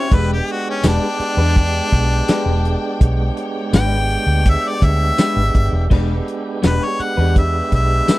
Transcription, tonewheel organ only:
0.11 G#3 B3 D4 G4
5.89 G#3 B3 D4
5.94 G4

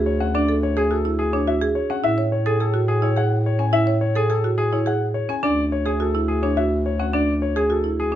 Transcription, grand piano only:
0.06 C#5
0.20 F#5
0.34 D5
0.63 C#5
0.77 G#4
0.91 A4
1.19 G#4
1.33 C#5
1.48 E5
1.75 C#5
1.90 F#5
2.04 E5
2.32 C#5
2.46 G#4
2.60 A4
2.88 G#4
3.03 C#5
3.17 F#5
3.46 C#5
3.59 G#5
3.73 E5
4.01 C#5
4.16 G#4
4.30 A4
4.58 G#4
4.73 C#5
4.87 F#5
5.14 C#5
5.30 G#5
5.44 D5
5.72 C#5
5.86 G#4
6.01 A4
6.28 G#4
6.43 C#5
6.57 E5
6.86 C#5
6.99 F#5
7.14 D5
7.42 C#5
7.56 G#4
7.71 A4
8.00 G#4

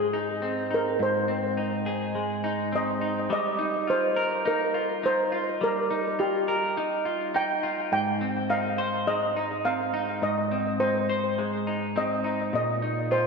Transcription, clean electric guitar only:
Already playing: G#2 G#3 C4 D#4 G#4
0.13 D#4
0.42 C4
0.71 D#4
0.99 G#2
1.28 C4
1.57 D#4
1.86 G#4
2.15 G#3
2.44 D#4
2.72 C4
3.01 D#4
3.30 G3
3.59 D#4
3.87 F4
4.16 A#4
4.45 D#4
4.74 F4
5.03 D#4
5.32 F4
5.61 G3
5.91 D#4
6.19 F4
6.48 A#4
6.77 D#4
7.05 F4
7.34 D#4
7.63 F4
7.92 G#2
8.21 C4
8.50 D#4
8.78 C5
9.07 G#3
9.36 D#4
9.65 C4
9.94 D#4
10.22 G#2
10.51 C4
10.80 D#4
11.09 C5
11.39 G#3
11.67 D#4
11.96 C4
12.24 D#4
12.53 A#2
12.82 D#4
13.11 F4

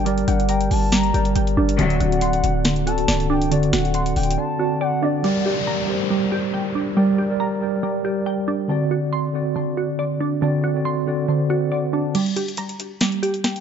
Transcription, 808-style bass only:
Already playing: G1
0.28 G1
0.71 G1
1.14 G1
1.36 G1
1.57 G1
1.79 D1
2.00 D1
2.43 D1
3.08 C1
3.73 D1
4.16 D1

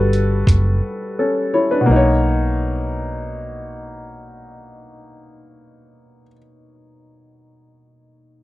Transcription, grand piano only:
Already playing: G3 F#4 A4 B4
1.19 C#4 A4
1.54 E4 C#5
1.71 D4 B4
1.81 B2
1.86 A#3
1.91 D#4
1.96 C#5

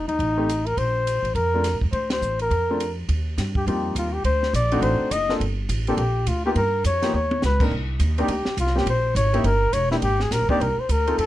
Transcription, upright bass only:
0.08 D#2
0.19 A1
0.77 A#1
1.22 A1
1.35 F2
1.74 A2
1.83 F2
1.93 D2
2.22 A1
2.51 F2
3.09 D#2
3.38 G2
3.67 F2
3.95 D#2
4.24 D2
4.53 A#1
4.82 A1
5.00 muted upright bass stroke
5.11 F#1
5.40 G1
5.69 A1
5.97 A#1
6.26 D2
6.55 G2
6.85 F2
7.14 D#2
7.43 C#2
7.71 C2
8.00 D#2
8.28 D2
8.46 muted upright bass stroke
8.57 C2
8.86 A#1
9.15 G#1
9.44 G1
9.73 E1
10.02 G#1
10.31 A#1
10.41 G#1
10.50 G1
10.60 C2
10.77 muted upright bass stroke
10.89 D2
11.18 F2

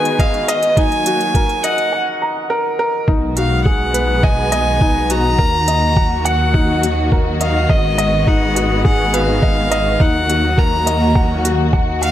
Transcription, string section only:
Already playing: D#3 G#3 B3 F#4
0.77 F#3 A#3
3.08 D#3 G#3 B3 F#4
5.39 F#3 A#3
7.69 G#3 B3
10.00 F#3 A#3 F#4

